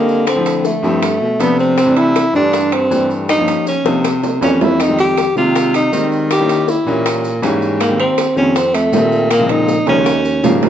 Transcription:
Already playing: baritone saxophone D3, grand piano G3 A#3 C4 D#5, tenor saxophone A#3
0.09 maracas
0.27 tenor saxophone C4, high bongo, high timbale, claves, maracas
0.36 grand piano F3 A3 C4 E4
0.46 high bongo, high timbale, maracas
0.65 tenor saxophone A3, high bongo, maracas
0.82 baritone saxophone G2, grand piano F3 A3 C4 E4, high bongo, maracas
1.02 high bongo, high timbale, claves, maracas
1.21 baritone saxophone B2, high bongo
1.39 baritone saxophone C3, grand piano F3 A3 B3 D4, tenor saxophone B3, high bongo, low bongo, high timbale, maracas
1.59 tenor saxophone C4, maracas
1.78 tenor saxophone C4, high bongo, high timbale, claves, maracas
1.86 grand piano E3 G3 A3 D4
1.97 tenor saxophone E4, high bongo, high timbale
2.16 high bongo, high timbale, claves, maracas
2.33 baritone saxophone G2, grand piano E3 G3 A3 D4, tenor saxophone D4, high bongo, maracas
2.53 high bongo, high timbale, maracas
2.72 tenor saxophone C4, high bongo, high timbale, claves
2.91 baritone saxophone G2, grand piano E3 G3 A3 D4, high bongo, low bongo, maracas
3.11 maracas
3.29 tenor saxophone D#4, high bongo, high timbale, claves, maracas
3.38 grand piano F3 G3 A#3 C#4
3.48 high bongo, high timbale, maracas
3.67 tenor saxophone C#4, high bongo, maracas
3.85 baritone saxophone C3, grand piano F3 G3 A#3 D#4, high bongo, maracas
4.04 high bongo, high timbale, claves, maracas
4.23 low bongo, high timbale, maracas
4.41 baritone saxophone F2, grand piano E3 G3 A#3 C#4, tenor saxophone C#4, low bongo, high timbale, maracas
4.61 tenor saxophone E4, low bongo, low timbale, maracas
4.80 tenor saxophone D#4, high bongo, high timbale, claves, maracas
4.88 grand piano D#3 G3 G#3 C4
4.99 tenor saxophone G4, high bongo, high timbale, maracas
5.18 high bongo, high timbale, claves, maracas
5.36 baritone saxophone C3, grand piano D#3 G3 G#3 A#3, tenor saxophone F4, high bongo, maracas
5.55 high bongo, high timbale, maracas
5.74 tenor saxophone D#4, high bongo, high timbale, claves, maracas
5.92 grand piano D#3 G3 G#3 C4, baritone saxophone D#3, high bongo, low bongo, maracas
6.12 maracas
6.31 tenor saxophone G4, high bongo, high timbale, claves, maracas
6.39 grand piano G3 A#3 C#4 E4
6.49 high bongo, high timbale, maracas
6.68 tenor saxophone E4, high bongo, maracas
6.86 baritone saxophone A#2, grand piano E3 G3 A#3 C#4, high bongo, maracas
7.06 high bongo, high timbale, claves, maracas
7.25 high bongo, maracas
7.42 baritone saxophone G#2, grand piano E3 G3 A#3 C#4, high bongo, low bongo, high timbale, maracas
7.62 maracas
7.80 tenor saxophone A#3, high bongo, high timbale, claves, maracas
7.89 grand piano D#3 G3 A#3 C4
8.00 tenor saxophone C4, high bongo, high timbale
8.18 high bongo, high timbale, claves, maracas
8.36 baritone saxophone F2, grand piano D#3 G3 A#3 C4, tenor saxophone C#4, high bongo, maracas
8.56 tenor saxophone C4, high bongo, high timbale, maracas
8.74 tenor saxophone A3, high bongo, high timbale, claves, maracas
8.92 baritone saxophone A#2, grand piano D#3 G3 A3 C4, high bongo, low bongo, low timbale, maracas
9.12 maracas
9.31 tenor saxophone A#3, high bongo, high timbale, claves, maracas
9.39 grand piano C#3 F3 G#3 C4
9.49 tenor saxophone D#4, high bongo, high timbale
9.69 high bongo, maracas
9.86 baritone saxophone D#2, grand piano C#3 F3 G#3 C#4, tenor saxophone C#4, high bongo, high timbale, maracas
10.06 high bongo, high timbale, claves, maracas
10.25 high bongo, maracas
10.43 baritone saxophone G#2, grand piano C#3 F3 G3 A#3, high bongo, low bongo, low timbale, maracas
10.63 low timbale, maracas

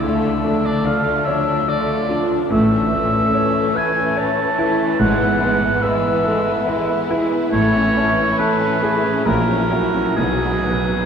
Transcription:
0.00 double bass section D2, grand piano D2, viola section D3, cello section D3, violin section A3 F4, oboe E5
0.44 viola section F3, grand piano A3, violin section D4
0.65 oboe D5
0.85 viola section D3, violin section A3 F4, grand piano D5, oboe F5
1.25 viola section F3, violin section D4, grand piano C#5, oboe E5
1.67 viola section D3, violin section A3 F4, grand piano D5, oboe D5
2.09 viola section F3, violin section D4, grand piano F4
2.50 double bass section A1, grand piano A2, cello section A2, viola section E3, violin section A3 C#4, oboe E5
2.71 violin section A3
2.92 violin section A3, grand piano A3
3.13 violin section A3
3.35 violin section A3, grand piano C#5
3.56 violin section A3
3.75 violin section A3, grand piano B4, oboe G#5
3.98 violin section A3
4.16 violin section A3, grand piano C#5, oboe A5
4.39 violin section A3
4.58 violin section A3, grand piano E4
4.82 violin section A3
4.99 double bass section G#1, grand piano G#2, cello section G#2, violin section G#3 E4, oboe F#5
5.22 violin section B3
5.41 violin section G#3, grand piano B3
5.63 violin section B3
5.82 violin section G#3, grand piano B4, oboe E5
6.05 violin section B3
6.24 violin section G#3, grand piano A4
6.49 violin section B3
6.67 violin section G#3, grand piano B4
6.90 violin section B3
7.10 violin section G#3, grand piano E4
7.32 violin section B3
7.52 double bass section A1, cello section A2, grand piano A2, viola section E3, violin section A3, oboe C#5
7.76 violin section C#4
7.97 violin section A3, grand piano C#4
8.19 violin section C#4
8.38 violin section A3, grand piano A4, oboe B4
8.61 violin section C#4
8.82 violin section A3, grand piano G#4
9.04 violin section C#4
9.26 grand piano A#1, double bass section A#1, cello section A#2, viola section F#3, violin section A#3, oboe A#4
9.51 violin section C#4
9.71 violin section A#3, grand piano E4 F#4
9.96 violin section C#4
10.16 double bass section B1, grand piano B1, cello section B2, timpani B2, violin section B3 D#4, oboe G#4
10.27 timpani B2
10.34 timpani B2
10.44 violin section B3
10.52 timpani B2
10.59 timpani B2
10.64 timpani B2, grand piano B3, violin section B3
10.75 timpani B2
10.83 timpani B2
10.91 timpani B2, violin section B3
11.01 timpani B2

